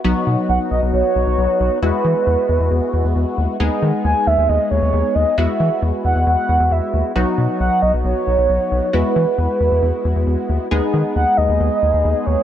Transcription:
X:1
M:4/4
L:1/16
Q:1/4=135
K:Bmix
V:1 name="Soft synth lead"
z4 f2 d2 c8 | B12- B2 z2 | z4 g2 e2 d2 c4 d2 | e4 z2 f2 f4 e3 z |
z4 f2 d2 c8 | B12- B2 z2 | z4 f2 d8 c2 |]
V:2 name="Analog polysynth"
[F,B,DF]16 | [G,B,EF]16 | [G,B,DG]16 | [G,B,EF]16 |
[F,B,DF]16 | [G,B,EF]16 | [G,B,DG]16 |]
V:3 name="Analog synth bass" clef=bass
B,,, z B,, z B,,, z B,,, B,,, B,,, z B,,, B,,, B,,, z B,,, z | E,, z E, z E,, z E,, E,, E,, z E,, E,, E,, z D,, z | D,, z D, z D,, z D,, D,, D,, z D,, D,, D,, z D,, z | E,, z E, z E,, z E,, E,, E,, z E,, E,, E,, z D,, z |
B,,, z B,, z B,,, z B,,, B,,, B,,, z B,,, B,,, B,,, z B,,, z | E,, z E, z E,, z E,, E,, E,, z E,, E,, E,, z D,, z | D,, z D, z D,, z D,, D,, D,, z D,, D,, D,, z D,, z |]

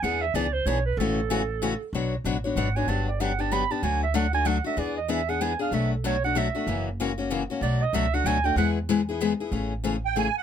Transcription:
X:1
M:3/4
L:1/8
Q:"Swing" 1/4=190
K:A
V:1 name="Accordion"
z6 | z6 | z6 | z6 |
z6 | z6 | z6 | z6 |
z6 | z6 | z3 =g ^g f |]
V:2 name="Clarinet"
f e d =c ^c B | A6 | z4 f g | a d f a b a |
g e f g f e | d ^d e f g =f | e A c f e2- | e z4 z |
d ^d e f g =g | f z4 z | z6 |]
V:3 name="Steel-string acoustic guitar"
[E,B,DG] z [E,B,DG] z [E,B,DG] z | [C,E,A,CF] z [C,E,A,CF] z [C,E,A,CF] z | [B,,F,B,DFc] z [B,,F,B,DFc] [B,DFc] [B,,F,B,DFc] [B,DFc] | [D,F,B,D=G] z [D,F,B,DG] [B,DG] [D,F,B,DG] [B,DG] |
[D,F,A,DF] z [D,F,A,DF] [A,DF] [D,F,A,DF] [A,DF] | [E,B,DG] z [E,B,DG] [B,DG] [E,B,DG] [B,DG] | [B,,F,A,DF] z [B,,F,A,DF] [A,DF] [B,,F,A,DF] [A,DF] | [C,E,^A,CF] z [C,E,A,CF] [A,CF] [C,E,A,CF] [A,CF] |
[B,,F,A,DF] z [B,,F,A,DF] [A,DF] [B,,F,A,DF] [A,DF] | [E,G,B,EG] z [E,G,B,EG] [B,EG] [E,G,B,EG] [B,EG] | [C,E,A,CG] z [C,E,A,CG] z [C,E,A,CG] z |]
V:4 name="Upright bass" clef=bass
E,,2 C,,2 B,,,2 | A,,,6 | B,,,2 A,,,2 G,,,2 | =G,,,6 |
D,,6 | E,,6 | B,,,6 | F,,,6 |
B,,,2 C,,2 D,,2 | E,,6 | A,,,6 |]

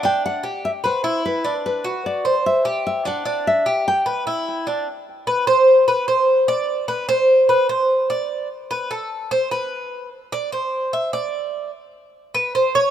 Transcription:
X:1
M:4/4
L:1/16
Q:1/4=149
K:G
V:1 name="Nylon-string guitar"
g2 f4 e2 c4 B3 z | B4 d4 e4 e2 f2- | f2 e4 g8 z2 | z16 |
z16 | z16 | z16 | z16 |]
V:2 name="Cuban tres"
D4 G4 B2 E4 D2- | D2 F4 c4 G4 D2 | D4 G4 B2 E4 D2 | z4 B2 c4 B2 c4 |
d4 B2 c4 B2 c4 | d4 z2 B2 A4 c2 B2- | B4 z2 d2 c4 e2 d2- | d4 z6 B2 c2 ^c2 |]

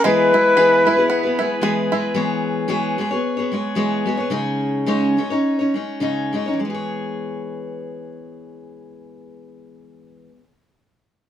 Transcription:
X:1
M:4/4
L:1/16
Q:"Swing" 1/4=106
K:E
V:1 name="Flugelhorn"
B12 z4 | z16 | z16 | z16 |
z16 |]
V:2 name="Cello"
E12- E2 z2 | z16 | z16 | z16 |
z16 |]
V:3 name="Five-string banjo"
[G,G]2 E2 G2 E2 B,2 E2 G2 E2 | z16 | z16 | z16 |
z16 |]
V:4 name="Steel-string acoustic guitar"
[E,G,B,GB]2 [G,B,GB]2 [E,G,B,GB]2 [G,B,GB] [B,GB]2 [B,GB] [G,B,GB]2 [E,G,B,GB]2 [G,B,GB]2 | [E,G,B,Gc]4 [E,G,B,Gc]2 [G,B,Gc] [B,Gc]2 [B,Gc] [G,B,Gc]2 [E,G,B,Gc]2 [G,B,Gc] [B,Gc] | [C,G,CDc]4 [C,G,CDc]2 [G,CDc] [CDc]2 [CDc] [G,CDc]2 [C,G,CDc]2 [G,CDc] [CDc] | [E,G,B,Gc]16- |
[E,G,B,Gc]16 |]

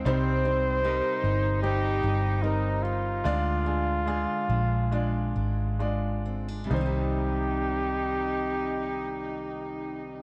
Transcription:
X:1
M:4/4
L:1/16
Q:1/4=70
K:Cm
V:1 name="Flugelhorn"
c8 G4 E2 F2- | F12 z4 | G16 |]
V:2 name="Cello section"
C4 E12 | z16 | E16 |]
V:3 name="Steel-string acoustic guitar"
[C,G]2 E2 G2 E2 G2 E2 C2 E2 | [D,F]2 D2 F2 D2 F2 D2 A,2 C D | [C,E,CEG]16 |]
V:4 name="Grand piano"
[G,CEc]2 [G,CEc]2 [G,CEB]4 [G,CEc]4 [G,CEB]4 | [A,DFd]2 [A,DFA]2 [A,DFA]4 [A,DFd]4 [A,DFd]4 | [G,Ec]16 |]
V:5 name="Grand piano" clef=bass
C,6 z8 z2 | D,6 z8 z2 | C,,16 |]
V:6 name="Fingered electric bass" clef=bass
C,,4- C,, z G,,,4 G,,,6 | D,,4- D,, z B,,,4 A,,,6 | C,,16 |]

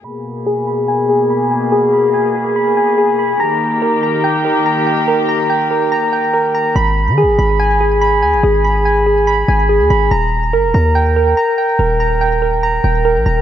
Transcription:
X:1
M:4/4
L:1/16
Q:1/4=143
K:G#m
V:1 name="Synth keys"
b4 G2 b2 g2 G2 b2 g2 | G2 b2 g2 G2 b2 g2 G2 b2 | a4 A2 a2 =g2 A2 a2 g2 | A2 a2 =g2 A2 a2 g2 A2 a2 |
b4 G2 b2 g2 G2 b2 g2 | G2 b2 g2 G2 b2 g2 G2 b2 | a4 A2 a2 =g2 A2 a2 g2 | A2 a2 =g2 A2 a2 g2 A2 a2 |]
V:2 name="String section"
[B,,A,G]16- | [B,,A,G]16 | [D,A,=G]16- | [D,A,=G]16 |
z16 | z16 | z16 | z16 |]
V:3 name="808-style bass" clef=bass
z16 | z16 | z16 | z16 |
G,,,3 D,3/2 G,,,3/2 G,,,8 D,, G,,, | G,,,8- G,,,2 G,,,3 D,, G,,,2 | D,,,4 =G,,, D,,, D,,6 z4 | D,,,8- D,,,2 D,,,3 A,,, D,,,2 |]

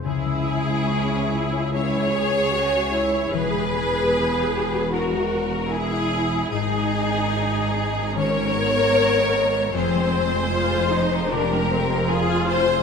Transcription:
X:1
M:4/4
L:1/16
Q:1/4=76
K:C#dor
V:1 name="Violin section"
G8 c8 | B8 A4 G4 | G8 c8 | =c8 A4 _A2 c2 |]
V:2 name="Harp"
[C,_A,_A_a] G, c G c' e G c C G, c G c' e G c | E, G, B,3 f2 F E G,4 f3 | G,, G,3 g d3 D, G,4 d2 B | =F,, _A, =c2 =c' =f2 c =C, A, c _A c' f A2 |]
V:3 name="Violin section"
E8 G8 | G8 F4 E4 | D8 A8 | _A8 =G4 =F2 A2 |]
V:4 name="Viola section"
E4 C2 E2 E2 G2 F2 E2 | G2 G6 F4 E4 | D8 C2 B,6 | =C4 =F2 D2 =D2 C2 F4 |]
V:5 name="Cello section" clef=bass
C,,16 | E,,16 | G,,16 | =F,,16 |]
V:6 name="Double bass section" clef=bass
C,,16 | E,,,16 | G,,,16 | =F,,,16 |]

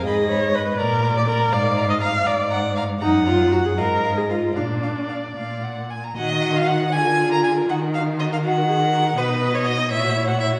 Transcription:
X:1
M:6/8
L:1/16
Q:3/8=80
K:Bbphr
V:1 name="Violin"
c'2 c'2 c'2 b2 b2 b2 | b2 b2 b2 b2 b2 b2 | b2 b2 b2 f2 f2 f2 | f2 f2 f2 f2 g2 a b |
e3 f g2 a3 b a2 | g2 f2 e f g6 | =B3 d ^d2 _f3 g f2 |]
V:2 name="Violin"
e6 =d6 | f6 f2 g2 f2 | g6 e6 | =d8- d z3 |
g e g e g e A B A B A B | G B G B G B G B G B G B | ^F ^D F D F D _F G F G F G |]
V:3 name="Viola"
A2 d2 c2 B3 =d B2 | =d3 e f2 d4 z2 | E2 F2 G A B3 A F2 | =D6 z6 |
G6 F6 | E6 G2 A2 B2 | ^d6 _d6 |]
V:4 name="Cello" clef=bass
A,,6 B,,6 | A,,6 A,,6 | G,,6 A,,6 | B,,6 B,,6 |
E,6 =D,6 | E,12 | =B,,6 _B,,6 |]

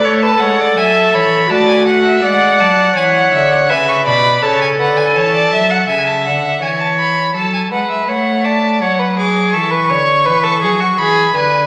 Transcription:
X:1
M:4/4
L:1/16
Q:1/4=82
K:Amix
V:1 name="Violin"
z a f2 ^g a b2 a g f e f2 a2 | ^g f e f g c' b2 a g f g a4 | ^g a f2 g a b2 a g f e f2 a2 | f2 d'2 c'8 b2 ^g2 |]
V:2 name="Violin"
c B c d e2 c2 d2 f6- | f4 e2 d2 c2 B2 c d e f | e4 c4 A2 B2 c2 d2 | c B ^G2 A B c2 B A G F G2 B2 |]
V:3 name="Viola"
A8 F4 d4 | c4 B4 A8 | z16 | z16 |]
V:4 name="Cello" clef=bass
A,2 ^G,2 F,2 E,2 A,4 G,2 F,2 | E,2 D,2 C,2 B,,2 C,2 D,2 E,2 F,2 | C,2 D,2 E,4 F,2 ^G,2 A,4 | F,4 E,2 D,2 E,2 F,2 E,2 D,2 |]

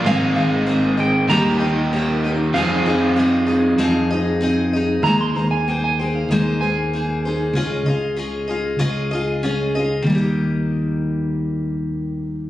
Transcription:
X:1
M:4/4
L:1/16
Q:1/4=96
K:Eb
V:1 name="Clean electric guitar"
f2 f4 g2 b2 g2 b4 | f8 z8 | b c' b a g a g f e2 a6- | a2 z12 z2 |
z16 |]
V:2 name="Steel-string acoustic guitar"
[A,B,CAe]2 [CAe]2 [B,CAe]2 [CAe]2 [E,G,B,EGe]2 [B,EGe]2 [B,EGe]2 [B,EGe]2 | [F,CEAe]2 [EAe]2 [CEAe]2 [EAe]2 [F,CEAe]2 [EAe]2 [CEAe]2 [EAe]2 | [E,A,B,EAc]2 [B,EAc]2 [B,EAc]2 [B,EAc]2 [E,A,B,EAc]2 [B,EAc]2 [B,EAc]2 [B,EAc]2 | [_DFAe]2 [FAe]2 [DFAe]2 [FAe]2 [DFAe]2 [FAe]2 [DFAe]2 [FAe]2 |
[E,G,B,EGe]16 |]
V:3 name="Overdriven electric guitar"
[A,CEA]8 [E,G,B,EG]8 | [F,CFA]16 | z16 | z16 |
z16 |]
V:4 name="Fingered electric bass" clef=bass
A,,,2 A,,,6 E,,8 | F,,2 F,,6 F,,8 | E,,2 E,,6 E,,8 | _D,,2 D,,6 D,,8 |
E,,16 |]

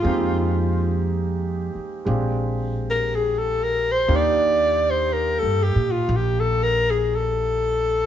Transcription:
X:1
M:4/4
L:1/16
Q:"Swing" 1/4=60
K:Eblyd
V:1 name="Alto saxophone"
F4 z6 z B _A =A B c | d3 c B A G F G A B _A =A4 |]
V:2 name="Upright piano"
[_A,B,CEG]8 [A,CDFG]8 | [B,DEFG]16 |]
V:3 name="Upright bass" clef=bass
F,,6 z2 B,,,8 | E,,4- (3E,,2 G,,2 B,,2 B,,,8 |]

